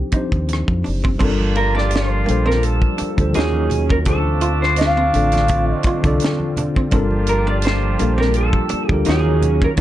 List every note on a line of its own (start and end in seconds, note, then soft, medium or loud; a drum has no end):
0.00 0.12 F3 medium
0.00 0.12 C4 medium
0.00 0.14 D4 medium
0.00 0.15 D#4 medium
0.00 0.16 G4 medium
0.00 0.82 G4 medium
0.00 1.22 A4 medium
0.00 0.17 C5 medium
0.12 1.09 F3 medium
0.12 1.09 C4 medium
0.12 1.10 D4 medium
0.12 0.24 D#4 medium
0.12 1.10 D#4 medium
0.12 muted fingered electric bass stroke soft
0.12 kick medium
0.12 closed hi-hat medium
0.16 1.11 G4 medium
0.16 1.11 C5 medium
0.32 0.62 D#2 medium
0.32 kick medium
0.32 closed hi-hat soft
0.49 muted hollow-body jazz guitar stroke soft
0.49 closed hi-hat medium
0.53 cross-stick loud
0.68 0.82 F2 medium
0.68 kick medium
0.84 1.16 F#1 medium
0.84 0.95 D4 medium
0.84 open hi-hat soft
1.04 1.13 C4 medium
1.04 kick medium
1.18 2.24 G1 loud
1.18 3.33 F3 medium
1.18 2.16 G3 medium
1.18 3.33 G3 medium
1.18 2.95 A#3 medium
1.18 4.03 A#3 medium
1.18 1.30 C4 loud
1.18 2.16 D4 medium
1.18 2.95 D4 medium
1.18 2.95 F4 medium
1.18 2.17 F4 medium
1.18 3.33 G4 loud
1.18 2.18 A4 medium
1.18 kick loud
1.18 crash loud
1.18 low conga medium
1.24 2.18 A#4 medium
1.39 high conga medium
1.55 1.74 A#4 medium
1.55 muted hollow-body jazz guitar stroke soft
1.55 closed hi-hat medium
1.75 1.84 D4 medium
1.75 1.93 D5 medium
1.75 snare soft
1.91 2.49 C5 medium
1.91 muted hollow-body jazz guitar stroke soft
1.91 closed hi-hat medium
1.96 snare loud
2.26 2.87 A#1 medium
2.26 3.07 G3 medium
2.26 2.37 A#3 medium
2.26 3.08 D4 medium
2.26 3.08 F4 medium
2.26 3.09 A4 medium
2.26 closed hi-hat medium
2.26 muted conga soft
2.30 3.09 C5 medium
2.46 2.55 C4 medium
2.46 2.63 A#4 medium
2.46 high conga medium
2.51 snare soft
2.62 3.35 A4 medium
2.62 closed hi-hat medium
2.62 muted conga soft
2.82 kick medium
2.98 3.09 D4 medium
2.98 muted fingered electric bass stroke soft
2.98 closed hi-hat medium
2.98 muted conga soft
3.17 3.32 D2 medium
3.17 3.34 G3 medium
3.17 3.34 D4 medium
3.17 3.34 F4 medium
3.17 3.36 A4 medium
3.17 kick loud
3.17 closed hi-hat medium
3.17 high conga medium
3.21 3.36 C5 medium
3.32 3.98 D#3 medium
3.32 4.05 D#3 medium
3.32 4.05 F#3 medium
3.32 3.70 F#3 medium
3.32 3.70 A#3 medium
3.32 4.05 C#4 medium
3.32 3.99 D#4 medium
3.32 3.70 D#4 medium
3.32 3.45 D#4 medium
3.32 3.99 F4 medium
3.32 4.00 F#4 medium
3.32 3.86 G#4 medium
3.32 closed hi-hat medium
3.37 4.08 D#2 medium
3.37 4.00 C#5 medium
3.37 snare loud
3.53 high conga medium
3.70 muted hollow-body jazz guitar stroke soft
3.70 closed hi-hat medium
3.70 muted conga soft
3.70 low conga medium
3.89 3.99 C#4 medium
3.89 3.96 A#4 medium
3.89 kick loud
4.04 5.10 D2 loud
4.04 5.01 D3 medium
4.04 6.90 D3 medium
4.04 6.52 F3 medium
4.04 6.52 A3 medium
4.04 6.90 C4 medium
4.04 5.02 D4 medium
4.04 6.52 D4 medium
4.04 4.17 D4 medium
4.04 5.03 F4 medium
4.04 6.89 F4 medium
4.04 4.58 A4 loud
4.04 5.03 A4 medium
4.04 kick loud
4.04 closed hi-hat medium
4.04 muted conga soft
4.04 low conga medium
4.09 5.04 C5 medium
4.25 high conga medium
4.41 4.52 F4 medium
4.41 closed hi-hat medium
4.62 4.78 C5 medium
4.62 snare soft
4.76 5.71 F5 medium
4.76 closed hi-hat medium
4.76 muted conga soft
4.81 snare loud
4.97 5.06 C4 medium
5.13 5.73 A1 loud
5.13 5.93 D3 medium
5.13 5.94 D4 medium
5.13 5.94 F4 medium
5.13 5.95 A4 medium
5.13 muted hollow-body jazz guitar stroke soft
5.13 closed hi-hat medium
5.17 5.95 D5 medium
5.32 5.42 D4 medium
5.32 closed hi-hat soft
5.32 high conga medium
5.36 snare soft
5.48 kick loud
5.48 closed hi-hat medium
5.71 6.17 D#5 medium
5.83 5.97 F4 medium
5.83 muted fingered electric bass stroke soft
5.83 kick loud
5.83 closed hi-hat medium
6.02 6.18 C2 medium
6.02 6.82 D3 medium
6.02 6.83 D4 medium
6.02 6.83 F4 medium
6.02 6.84 A4 medium
6.02 kick loud
6.02 closed hi-hat soft
6.02 high conga medium
6.07 6.84 D5 medium
6.20 muted hollow-body jazz guitar stroke medium
6.20 closed hi-hat medium
6.24 snare loud
6.40 high conga medium
6.57 6.68 D4 medium
6.57 closed hi-hat medium
6.57 muted conga soft
6.57 low conga medium
6.76 6.86 C4 medium
6.76 kick loud
6.91 7.96 G1 loud
6.91 9.04 F3 medium
6.91 7.87 G3 medium
6.91 8.67 A#3 medium
6.91 9.04 A#3 medium
6.91 7.03 C4 medium
6.91 7.88 D4 medium
6.91 8.67 D4 medium
6.91 8.67 F4 medium
6.91 7.89 F4 medium
6.91 9.04 G4 medium
6.91 7.89 A4 medium
6.91 kick loud
6.91 closed hi-hat medium
6.91 muted conga soft
6.91 low conga medium
6.96 7.90 A#4 medium
7.11 high conga medium
7.27 7.48 A#4 medium
7.27 muted hollow-body jazz guitar stroke soft
7.27 closed hi-hat medium
7.47 7.56 D4 medium
7.47 7.54 D5 medium
7.62 8.21 C5 medium
7.62 muted hollow-body jazz guitar stroke soft
7.62 closed hi-hat medium
7.67 snare loud
7.98 8.58 A#1 medium
7.98 8.79 G3 medium
7.98 8.10 A#3 medium
7.98 8.79 D4 medium
7.98 8.80 F4 medium
7.98 8.81 A4 medium
7.98 closed hi-hat medium
7.98 muted conga soft
8.03 8.81 A#3 medium
8.18 8.27 C4 medium
8.18 8.36 A#4 medium
8.18 snare soft
8.18 high conga medium
8.33 8.91 A4 medium
8.33 closed hi-hat medium
8.33 muted conga soft
8.53 kick medium
8.69 8.81 D4 medium
8.69 muted fingered electric bass stroke soft
8.69 closed hi-hat medium
8.89 9.03 D2 medium
8.89 9.06 G3 medium
8.89 9.07 D4 medium
8.89 9.07 F4 medium
8.89 9.09 G4 medium
8.89 9.08 A4 medium
8.89 kick medium
8.89 high conga medium
8.94 9.08 A#4 medium
9.05 9.65 D#2 medium
9.05 9.70 D#3 medium
9.05 9.77 D#3 medium
9.05 9.77 F#3 medium
9.05 9.41 F#3 medium
9.05 9.77 A#3 medium
9.05 9.41 A#3 medium
9.05 9.77 C#4 medium
9.05 9.17 D#4 medium
9.05 9.41 D#4 medium
9.05 9.70 D#4 medium
9.05 9.71 F4 medium
9.05 9.72 F#4 medium
9.05 closed hi-hat medium
9.09 9.64 G#4 medium
9.09 9.72 C#5 medium
9.09 snare loud
9.25 high conga medium
9.42 muted hollow-body jazz guitar stroke soft
9.42 closed hi-hat medium
9.42 muted conga soft
9.42 low conga medium
9.62 9.71 C#4 medium
9.62 9.69 A#4 medium
9.62 kick loud
9.76 9.81 D3 medium
9.76 9.81 C4 medium
9.76 9.81 D4 medium
9.76 9.81 F4 medium
9.76 kick loud
9.76 closed hi-hat medium
9.76 muted conga soft
9.76 low conga medium